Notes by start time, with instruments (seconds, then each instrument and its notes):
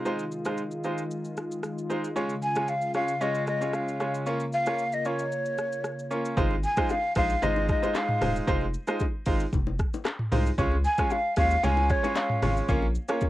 Already playing: analog synth pad G#3 F4
0.05 analog synth pad D#3, grand piano G#3 D#4 F4 C5, shaker
0.19 shaker
0.32 shaker
0.45 grand piano G#3 D#4 F4 C5, cross-stick, shaker
0.57 shaker
0.71 shaker
0.84 grand piano G#3 D#4 F4 C5, shaker
0.98 shaker
1.11 shaker
1.24 shaker
1.37 cross-stick, shaker
1.51 shaker
1.63 cross-stick, shaker
1.78 shaker
1.90 grand piano G#3 D#4 F4 C5, shaker
2.04 shaker
2.16 analog synth pad C#3, grand piano G#3 C#4 F4 C#5, shaker
2.29 shaker
2.42 flute G#5, shaker
2.56 grand piano G#3 C#4 F4 C#5, cross-stick, shaker
2.68 flute F5, shaker
2.82 shaker
2.94 grand piano G#3 C#4 F4 C#5, flute F5, cross-stick, shaker
3.08 shaker
3.21 grand piano G#3 C#4 F4 C#5, flute D#5, shaker
3.35 shaker
3.47 flute D#5, cross-stick, shaker
3.61 grand piano G#3 C#4 F4 C#5, shaker
3.73 flute F5, cross-stick, shaker
3.88 shaker
4.00 grand piano G#3 C#4 F4 C#5, cross-stick, shaker
4.15 shaker
4.26 grand piano A#3 C#4 F4 C#5, analog synth pad A#3, shaker
4.40 shaker
4.53 flute F5, shaker
4.66 grand piano A#3 C#4 F4 C#5, cross-stick, shaker
4.78 shaker
4.92 flute D#5, shaker
5.05 grand piano A#3 C#4 F4 C#5, flute C#5, shaker
5.19 shaker
5.32 shaker
5.46 shaker
5.58 cross-stick, shaker
5.73 shaker
5.84 cross-stick, shaker
5.99 shaker
6.11 grand piano A#3 C#4 F4 C#5, shaker
6.25 shaker
6.37 sub bass G#1, grand piano G#3 D#4 F4 C5, kick, low conga, shaker
6.51 high bongo
6.63 flute G#5, shaker
6.77 grand piano G#3 D#4 F4 C5, kick, cross-stick, shaker
6.89 flute F5, high bongo, shaker
7.15 sub bass A#1, grand piano G#3 D#4 F4 C5, flute F5, kick, cross-stick, open hi-hat, shaker
7.30 shaker
7.42 sub bass G#1, grand piano G#3 D#4 F4 C5, flute D#5, low conga, shaker
7.56 low bongo
7.69 flute D#5, kick, cross-stick, shaker
7.82 grand piano G#3 D#4 F4 C5, low bongo, shaker
7.95 flute F5, clap, high bongo, shaker
8.09 mid tom
8.21 sub bass D#1, grand piano G#3 D#4 F4 C5, cross-stick, mid tom, open hi-hat, high bongo, low conga, shaker
8.36 shaker
8.47 sub bass F1, grand piano G#3 D#4 F4 C5, kick, low conga, shaker
8.61 high bongo
8.74 shaker
8.87 grand piano G#3 D#4 F4 C5, cross-stick, shaker
9.00 kick, high bongo, shaker
9.26 sub bass G#1, grand piano G#3 D#4 F4 C5, kick, open hi-hat, shaker
9.40 shaker
9.53 sub bass F1, kick, low conga, shaker
9.67 low bongo
9.79 kick, cross-stick, shaker
9.94 low bongo, shaker
10.05 cross-stick, clap, high bongo, shaker
10.19 mid tom
10.32 sub bass C2, grand piano G#3 D#4 F4 C5, mid tom, open hi-hat, high bongo, low conga, shaker
10.46 shaker
10.58 sub bass C#2, grand piano G#3 C#4 F4 C#5, kick, low conga, shaker
10.72 high bongo
10.84 flute G#5, shaker
10.98 grand piano G#3 C#4 F4 C#5, kick, cross-stick, shaker
11.10 flute F5, high bongo, shaker
11.36 sub bass D#2, grand piano G#3 C#4 F4 C#5, flute F5, kick, cross-stick, open hi-hat, shaker
11.51 shaker
11.63 sub bass C#2, grand piano G#3 C#4 F4 C#5, flute G#5, low conga, shaker
11.77 low bongo
11.90 flute C#5, kick, cross-stick, shaker
12.03 grand piano G#3 C#4 F4 C#5, low bongo, shaker
12.16 flute F5, clap, high bongo, shaker
12.30 mid tom
12.42 sub bass G#1, grand piano G#3 C#4 F4 C#5, cross-stick, mid tom, open hi-hat, high bongo, low conga, shaker
12.57 shaker
12.68 sub bass A#1, grand piano A#3 C#4 F4 C#5, kick, low conga, shaker
12.82 high bongo
12.95 shaker
13.08 grand piano A#3 C#4 F4 C#5, cross-stick, shaker
13.21 kick, high bongo, shaker